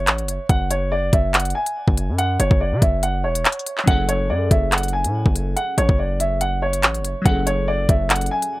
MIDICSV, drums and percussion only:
0, 0, Header, 1, 2, 480
1, 0, Start_track
1, 0, Key_signature, 3, "minor"
1, 0, Tempo, 422535
1, 562, Time_signature, 4, 2, 24, 8
1, 9770, End_track
2, 0, Start_track
2, 0, Title_t, "Drums"
2, 81, Note_on_c, 9, 42, 71
2, 83, Note_on_c, 9, 39, 115
2, 195, Note_off_c, 9, 42, 0
2, 196, Note_off_c, 9, 39, 0
2, 209, Note_on_c, 9, 42, 41
2, 322, Note_off_c, 9, 42, 0
2, 323, Note_on_c, 9, 42, 89
2, 436, Note_off_c, 9, 42, 0
2, 561, Note_on_c, 9, 42, 76
2, 562, Note_on_c, 9, 36, 114
2, 675, Note_off_c, 9, 36, 0
2, 675, Note_off_c, 9, 42, 0
2, 801, Note_on_c, 9, 42, 79
2, 915, Note_off_c, 9, 42, 0
2, 1282, Note_on_c, 9, 36, 101
2, 1283, Note_on_c, 9, 42, 81
2, 1396, Note_off_c, 9, 36, 0
2, 1397, Note_off_c, 9, 42, 0
2, 1522, Note_on_c, 9, 42, 86
2, 1523, Note_on_c, 9, 39, 106
2, 1586, Note_off_c, 9, 42, 0
2, 1586, Note_on_c, 9, 42, 74
2, 1636, Note_off_c, 9, 39, 0
2, 1650, Note_off_c, 9, 42, 0
2, 1650, Note_on_c, 9, 42, 62
2, 1707, Note_off_c, 9, 42, 0
2, 1707, Note_on_c, 9, 42, 49
2, 1820, Note_off_c, 9, 42, 0
2, 1890, Note_on_c, 9, 42, 75
2, 2004, Note_off_c, 9, 42, 0
2, 2131, Note_on_c, 9, 36, 82
2, 2243, Note_on_c, 9, 42, 88
2, 2245, Note_off_c, 9, 36, 0
2, 2357, Note_off_c, 9, 42, 0
2, 2483, Note_on_c, 9, 42, 77
2, 2596, Note_off_c, 9, 42, 0
2, 2723, Note_on_c, 9, 42, 81
2, 2836, Note_off_c, 9, 42, 0
2, 2850, Note_on_c, 9, 36, 99
2, 2963, Note_off_c, 9, 36, 0
2, 3203, Note_on_c, 9, 36, 102
2, 3204, Note_on_c, 9, 42, 77
2, 3316, Note_off_c, 9, 36, 0
2, 3317, Note_off_c, 9, 42, 0
2, 3441, Note_on_c, 9, 42, 84
2, 3554, Note_off_c, 9, 42, 0
2, 3809, Note_on_c, 9, 42, 74
2, 3922, Note_off_c, 9, 42, 0
2, 3922, Note_on_c, 9, 42, 59
2, 3923, Note_on_c, 9, 39, 112
2, 4003, Note_off_c, 9, 42, 0
2, 4003, Note_on_c, 9, 42, 59
2, 4037, Note_off_c, 9, 39, 0
2, 4082, Note_off_c, 9, 42, 0
2, 4082, Note_on_c, 9, 42, 55
2, 4163, Note_off_c, 9, 42, 0
2, 4163, Note_on_c, 9, 42, 87
2, 4277, Note_off_c, 9, 42, 0
2, 4290, Note_on_c, 9, 39, 64
2, 4402, Note_on_c, 9, 42, 76
2, 4403, Note_off_c, 9, 39, 0
2, 4403, Note_on_c, 9, 36, 113
2, 4515, Note_off_c, 9, 42, 0
2, 4516, Note_off_c, 9, 36, 0
2, 4643, Note_on_c, 9, 42, 77
2, 4756, Note_off_c, 9, 42, 0
2, 5123, Note_on_c, 9, 36, 106
2, 5124, Note_on_c, 9, 42, 77
2, 5237, Note_off_c, 9, 36, 0
2, 5237, Note_off_c, 9, 42, 0
2, 5363, Note_on_c, 9, 39, 109
2, 5363, Note_on_c, 9, 42, 87
2, 5427, Note_off_c, 9, 42, 0
2, 5427, Note_on_c, 9, 42, 73
2, 5477, Note_off_c, 9, 39, 0
2, 5491, Note_off_c, 9, 42, 0
2, 5491, Note_on_c, 9, 42, 64
2, 5548, Note_off_c, 9, 42, 0
2, 5548, Note_on_c, 9, 42, 51
2, 5661, Note_off_c, 9, 42, 0
2, 5731, Note_on_c, 9, 42, 72
2, 5844, Note_off_c, 9, 42, 0
2, 5972, Note_on_c, 9, 36, 89
2, 6084, Note_on_c, 9, 42, 86
2, 6085, Note_off_c, 9, 36, 0
2, 6198, Note_off_c, 9, 42, 0
2, 6323, Note_on_c, 9, 42, 75
2, 6437, Note_off_c, 9, 42, 0
2, 6564, Note_on_c, 9, 42, 81
2, 6678, Note_off_c, 9, 42, 0
2, 6690, Note_on_c, 9, 36, 99
2, 6804, Note_off_c, 9, 36, 0
2, 7044, Note_on_c, 9, 42, 80
2, 7158, Note_off_c, 9, 42, 0
2, 7281, Note_on_c, 9, 42, 80
2, 7394, Note_off_c, 9, 42, 0
2, 7649, Note_on_c, 9, 42, 72
2, 7762, Note_off_c, 9, 42, 0
2, 7762, Note_on_c, 9, 42, 70
2, 7763, Note_on_c, 9, 39, 112
2, 7875, Note_off_c, 9, 42, 0
2, 7876, Note_off_c, 9, 39, 0
2, 7890, Note_on_c, 9, 42, 39
2, 8003, Note_off_c, 9, 42, 0
2, 8004, Note_on_c, 9, 42, 87
2, 8117, Note_off_c, 9, 42, 0
2, 8242, Note_on_c, 9, 36, 116
2, 8242, Note_on_c, 9, 42, 77
2, 8356, Note_off_c, 9, 36, 0
2, 8356, Note_off_c, 9, 42, 0
2, 8483, Note_on_c, 9, 42, 78
2, 8597, Note_off_c, 9, 42, 0
2, 8962, Note_on_c, 9, 36, 104
2, 8963, Note_on_c, 9, 42, 80
2, 9076, Note_off_c, 9, 36, 0
2, 9076, Note_off_c, 9, 42, 0
2, 9202, Note_on_c, 9, 39, 105
2, 9202, Note_on_c, 9, 42, 84
2, 9266, Note_off_c, 9, 42, 0
2, 9266, Note_on_c, 9, 42, 72
2, 9316, Note_off_c, 9, 39, 0
2, 9330, Note_off_c, 9, 42, 0
2, 9330, Note_on_c, 9, 42, 61
2, 9387, Note_off_c, 9, 42, 0
2, 9387, Note_on_c, 9, 42, 50
2, 9500, Note_off_c, 9, 42, 0
2, 9569, Note_on_c, 9, 42, 75
2, 9683, Note_off_c, 9, 42, 0
2, 9770, End_track
0, 0, End_of_file